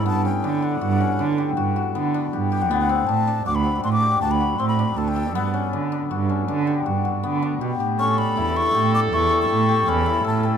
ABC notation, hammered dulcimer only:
X:1
M:7/4
L:1/8
Q:1/4=159
K:Glyd
V:1 name="Hammered dulcimer"
B, C D D F C D G F F B, D G G | B, =C D D F C D G F F C D A A | B, C D D F C D G F F B, D G G | C D E E G D E A G G C E A A |]